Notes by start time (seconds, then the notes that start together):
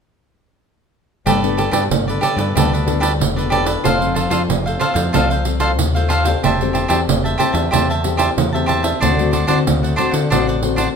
1.25 G1 G3 B3 D4 G4 A4 B4 D5, pandeiro
1.43 B3 D4 A4, pandeiro
1.57 G4 A4 B4 D5, pandeiro
1.71 G2 B3 D4 G4 A4 B4 D5, pandeiro
1.90 G1 D3, pandeiro
2.08 A4 B4 D5, pandeiro
2.21 B3 D4 G4 A4 B4 D5, pandeiro
2.37 G2 A4 B4 D5, pandeiro
2.55 D2 G3 B3 D4 G4 A4 B4 D5, pandeiro
2.72 A4 B4 D5, pandeiro
2.86 B3 D4 A4, pandeiro
3.00 G4 A4 B4 D5, pandeiro
3.19 E1 D3, pandeiro
3.36 B3 D4 A4 B4 D5, pandeiro
3.50 G4 A4 B4 D5, pandeiro
3.65 A4 B4 D5, pandeiro
3.84 F1 F3 C4 F4 A4 C5 F5, pandeiro
4.00 C4 F4 A4, pandeiro
4.14 F4 A4 C5 F5, pandeiro
4.29 F2 C4 F4 A4 C5 F5, pandeiro
4.49 F1 C3, pandeiro
4.66 A4 C5 F5, pandeiro
4.79 C4 F4 A4 C5 F5, pandeiro
4.94 F2 A4 C5 F5, pandeiro
5.13 C2 F3 C4 F4 A4 C5 F5, pandeiro
5.30 A4 C5 F5, pandeiro
5.45 C4 F4 A4, pandeiro
5.60 F4 A4 C5 F5, pandeiro
5.78 D#2 C3, pandeiro
5.95 C4 F4 A4 C5 F5, pandeiro
6.09 F4 A4 C5 F5, pandeiro
6.25 C4 G4 A4 C5 F5, pandeiro
6.43 E1 E3 G4 C5 E5 A5, pandeiro
6.61 C4 G4 A4, pandeiro
6.73 G4 C5 E5 A5, pandeiro
6.88 E2 C4 G4 A4 C5 E5 A5, pandeiro
7.08 E1 E3, pandeiro
7.24 C5 E5 A5, pandeiro
7.38 C4 G4 A4 C5 E5 A5, pandeiro
7.52 E2 C5 E5 A5, pandeiro
7.71 E2 E3 C4 G4 A4 C5 E5 A5, pandeiro
7.90 C5 E5 A5, pandeiro
8.04 C4 G4 A4, pandeiro
8.17 G4 C5 E5 A5, pandeiro
8.37 E2 E3, pandeiro
8.53 C4 G4 A4 C5 E5 A5, pandeiro
8.66 G4 C5 E5 A5, pandeiro
8.83 C5 E5 A5, pandeiro
9.00 D2 D3 A3 C4 D4 F#4 C5 D5 F#5, pandeiro
9.19 A3 C4 F#4, pandeiro
9.31 D4 C5 D5 F#5, pandeiro
9.47 D3 A3 C4 D4 F#4 C5 D5 F#5, pandeiro
9.66 D2 A2, pandeiro
9.83 C5 D5 F#5, pandeiro
9.96 A3 C4 D4 F#4 C5 D5 F#5, pandeiro
10.11 D3 C5 D5 F#5, pandeiro
10.30 A1 D3 A3 C4 D4 F#4 C5 D5 F#5, pandeiro
10.47 C5 D5 F#5, pandeiro
10.63 A3 C4 F#4, pandeiro
10.76 D4 C5 D5 F#5, pandeiro